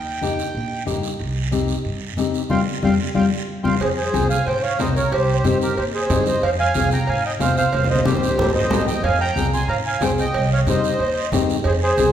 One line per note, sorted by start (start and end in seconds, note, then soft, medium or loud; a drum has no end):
0.00 0.42 D#2 medium
0.00 0.84 G5 medium
0.21 0.44 A#3 medium
0.21 0.45 D#4 medium
0.21 0.45 G4 medium
0.21 high conga medium
0.21 short guiro medium
0.39 short guiro medium
0.54 0.89 A#1 medium
0.54 high conga soft
0.54 long guiro medium
0.86 1.13 G2 medium
0.86 1.09 A#3 medium
0.86 1.10 D#4 medium
0.86 1.10 G4 medium
0.86 high conga medium
0.86 short guiro medium
1.03 short guiro medium
1.19 1.73 C2 medium
1.19 high conga soft
1.19 long guiro medium
1.51 1.75 C4 medium
1.51 1.75 D#4 medium
1.51 1.75 G4 medium
1.51 high conga medium
1.51 short guiro medium
1.68 short guiro medium
1.85 2.18 G2 medium
1.85 high conga soft
1.85 long guiro medium
2.17 2.44 D#2 medium
2.17 2.41 C4 medium
2.17 2.41 D#4 medium
2.17 2.41 G4 medium
2.17 high conga medium
2.17 short guiro medium
2.34 short guiro medium
2.50 2.63 F2 medium
2.50 2.61 G3 medium
2.50 2.61 C4 medium
2.50 2.61 F4 medium
2.50 2.61 F5 medium
2.50 2.61 G5 medium
2.50 2.61 C6 medium
2.50 high conga medium
2.50 long guiro medium
2.83 2.96 F2 medium
2.83 2.94 G3 medium
2.83 2.94 C4 medium
2.83 2.94 F4 medium
2.83 2.94 F5 medium
2.83 2.94 G5 medium
2.83 2.94 C6 medium
2.83 high conga medium
2.83 long guiro medium
3.14 3.28 F2 medium
3.14 3.26 G3 medium
3.14 3.25 C4 medium
3.14 3.26 F4 medium
3.14 3.26 F5 medium
3.14 3.26 G5 medium
3.14 3.26 C6 medium
3.14 high conga medium
3.14 long guiro medium
3.63 3.77 F2 medium
3.63 3.75 G3 medium
3.63 3.75 C4 medium
3.63 3.75 F4 medium
3.63 3.75 F5 medium
3.63 3.75 G5 medium
3.63 3.75 C6 medium
3.63 high conga medium
3.63 long guiro medium
3.81 4.07 F2 loud
3.81 3.88 G#4 medium
3.81 3.90 C5 medium
3.81 cowbell loud
3.81 high conga soft
3.81 long guiro medium
3.96 4.27 G#4 medium
3.96 4.28 C5 medium
4.13 4.40 C2 medium
4.13 4.37 C4 medium
4.13 4.37 F4 medium
4.13 4.37 G#4 medium
4.13 cowbell medium
4.13 high conga medium
4.13 short guiro medium
4.30 4.45 F5 medium
4.30 4.48 G#5 medium
4.30 short guiro medium
4.46 4.73 G#2 medium
4.46 4.62 C5 medium
4.46 4.62 G5 medium
4.46 cowbell medium
4.46 high conga soft
4.46 long guiro medium
4.62 4.78 C#5 medium
4.62 4.80 F5 medium
4.78 5.05 C2 medium
4.78 5.02 C4 medium
4.78 5.02 F4 medium
4.78 5.02 A#4 medium
4.78 4.94 C5 medium
4.78 4.95 D#5 medium
4.78 cowbell medium
4.78 high conga medium
4.78 low timbale medium
4.78 short guiro medium
4.95 5.11 A#4 medium
4.95 5.13 C#5 medium
4.95 short guiro medium
5.12 5.38 C2 loud
5.12 5.58 G4 medium
5.12 5.58 C5 medium
5.12 cowbell loud
5.12 high conga soft
5.12 long guiro medium
5.44 5.71 G2 medium
5.44 5.67 C4 medium
5.44 5.67 D#4 medium
5.44 5.68 G4 medium
5.44 cowbell medium
5.44 high conga medium
5.44 short guiro medium
5.61 5.75 G4 medium
5.61 5.77 A#4 medium
5.61 short guiro medium
5.77 6.04 D#2 medium
5.77 5.84 G4 medium
5.77 5.85 C5 medium
5.77 cowbell medium
5.77 high conga soft
5.77 long guiro medium
5.94 6.24 G#4 medium
5.94 6.24 C5 medium
6.10 6.36 G2 medium
6.10 6.33 C4 medium
6.10 6.33 D#4 medium
6.10 6.33 G4 medium
6.10 cowbell medium
6.10 high conga medium
6.10 low conga medium
6.10 low timbale medium
6.10 short guiro medium
6.26 6.42 C5 medium
6.26 6.42 D#5 medium
6.26 short guiro medium
6.42 6.69 F2 loud
6.42 6.51 C5 medium
6.42 6.50 F5 medium
6.42 cowbell loud
6.42 high conga soft
6.42 long guiro medium
6.59 6.90 F5 medium
6.59 6.89 G#5 loud
6.75 7.01 C2 medium
6.75 6.98 C4 medium
6.75 6.98 F4 medium
6.75 6.98 G#4 medium
6.75 cowbell medium
6.75 high conga medium
6.75 short guiro medium
6.91 7.07 G5 medium
6.91 7.09 A#5 loud
6.91 short guiro medium
7.07 7.34 G#2 medium
7.07 7.24 F5 medium
7.07 7.24 G#5 loud
7.07 cowbell medium
7.07 high conga soft
7.07 long guiro medium
7.26 7.33 D#5 medium
7.26 7.33 G5 medium
7.39 7.67 C2 medium
7.39 7.63 C4 medium
7.39 7.63 F4 medium
7.39 7.63 G#4 medium
7.39 7.56 C5 medium
7.39 7.56 F5 medium
7.39 cowbell medium
7.39 high conga medium
7.39 low timbale medium
7.39 short guiro medium
7.57 7.87 C5 medium
7.57 7.88 F5 loud
7.57 short guiro medium
7.73 7.99 C2 loud
7.73 cowbell loud
7.73 high conga medium
7.73 long guiro medium
7.84 high conga medium
7.90 8.05 C5 medium
7.90 8.05 D#5 medium
7.95 high conga loud
8.05 8.32 G2 medium
8.05 8.28 C4 medium
8.05 8.29 D#4 medium
8.05 8.28 G4 medium
8.05 8.51 G4 medium
8.05 8.52 C5 medium
8.05 cowbell medium
8.05 high conga loud
8.05 short guiro medium
8.17 low conga medium
8.23 short guiro medium
8.28 low conga medium
8.38 8.65 D#2 medium
8.38 cowbell medium
8.38 low conga loud
8.38 long guiro medium
8.50 low conga medium
8.55 8.85 C5 medium
8.55 8.85 D#5 loud
8.60 low conga medium
8.70 8.97 D#2 medium
8.70 8.93 C4 medium
8.70 8.94 D#4 medium
8.70 8.94 G4 medium
8.70 cowbell medium
8.70 low conga loud
8.70 low timbale medium
8.70 short guiro medium
8.82 low conga medium
8.87 9.03 D#5 medium
8.87 9.03 G5 medium
8.87 short guiro medium
8.92 low conga medium
9.03 9.30 F2 loud
9.03 9.19 F5 medium
9.03 9.20 G#5 loud
9.03 cowbell loud
9.03 high conga soft
9.03 long guiro medium
9.20 9.51 G5 medium
9.20 9.51 A#5 loud
9.35 9.62 C2 medium
9.35 9.59 C4 medium
9.35 9.59 F4 medium
9.35 9.59 G#4 medium
9.35 cowbell medium
9.35 high conga medium
9.35 short guiro medium
9.53 9.69 G#5 medium
9.53 9.69 C6 medium
9.53 short guiro medium
9.68 9.94 G#2 medium
9.68 9.76 F5 medium
9.68 9.76 A#5 loud
9.68 cowbell medium
9.68 high conga soft
9.68 long guiro medium
9.86 10.01 F5 medium
9.86 10.03 G#5 medium
10.01 10.28 C2 medium
10.01 10.24 C4 medium
10.01 10.25 F4 medium
10.01 10.25 G#4 medium
10.01 10.10 C5 medium
10.01 10.10 G5 loud
10.01 cowbell medium
10.01 high conga medium
10.01 low timbale medium
10.01 short guiro medium
10.18 10.50 D#5 medium
10.18 10.49 G5 loud
10.18 short guiro medium
10.34 10.60 C2 loud
10.34 cowbell loud
10.34 high conga soft
10.34 long guiro medium
10.53 10.60 C#5 medium
10.53 10.60 F5 medium
10.66 10.93 G2 medium
10.66 10.90 C4 medium
10.66 10.90 D#4 medium
10.66 10.90 G4 medium
10.66 11.29 C5 medium
10.66 11.29 D#5 medium
10.66 cowbell medium
10.66 high conga medium
10.66 short guiro medium
10.84 short guiro medium
10.99 11.25 D#2 medium
10.99 cowbell medium
10.99 high conga soft
10.99 long guiro medium
11.32 11.58 G2 medium
11.32 11.55 C4 medium
11.32 11.55 D#4 medium
11.32 11.56 G4 loud
11.32 cowbell medium
11.32 high conga medium
11.32 low conga medium
11.32 low timbale medium
11.32 short guiro medium
11.50 short guiro medium
11.64 11.91 F2 loud
11.64 11.73 G#4 medium
11.64 11.74 C5 medium
11.64 cowbell loud
11.64 high conga soft
11.64 long guiro medium
11.82 12.12 G#4 medium
11.82 12.12 C5 loud
11.98 12.12 C2 medium
11.98 12.12 C4 medium
11.98 12.12 F4 medium
11.98 12.12 G#4 medium
11.98 cowbell medium
11.98 high conga medium
11.98 short guiro medium